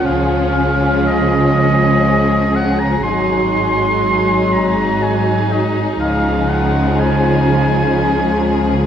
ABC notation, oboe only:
X:1
M:3/4
L:1/16
Q:1/4=61
K:Db
V:1 name="Oboe"
f4 e6 g b | c'6 b2 a2 e2 | f2 g2 a6- a z |]